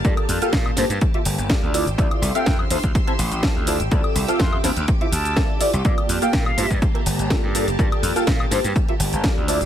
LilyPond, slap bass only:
\new Staff \with { instrumentName = "Slap bass" } { \clef bass \time 4/4 \key g \dorian \tempo 4 = 124 g,16 r16 f,16 r16 bes,16 r16 g,16 g,16 r8 g,,16 g,,16 r16 d,8 a,,16 | d,16 r16 c,16 r16 f,16 r16 d,16 d,16 r8 a,,16 a,,16 r16 d,8 a,,16 | d,16 r16 c,16 r16 f,16 r16 d,16 d,16 r8 d,8 r8. c,16 | r8 f,16 r16 bes,16 r16 g,16 g,16 r8 g,,16 g,,16 r16 g,8 g,,16 |
g,16 r16 f,16 r16 bes,16 r16 g,16 g,16 r8 g,,16 g,,16 r16 d,8 a,,16 | }